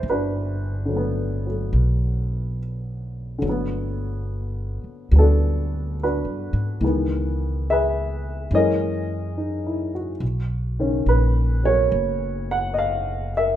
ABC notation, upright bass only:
X:1
M:4/4
L:1/8
Q:"Swing" 1/4=71
K:Bphr
V:1 name="Upright bass" clef=bass
G,,,4 B,,,4 | G,,,3 z D,,2- (3D,, G,, _A,, | ^C,,4 F,,4 | B,,,2 ^A,,,2 F,,,4 |]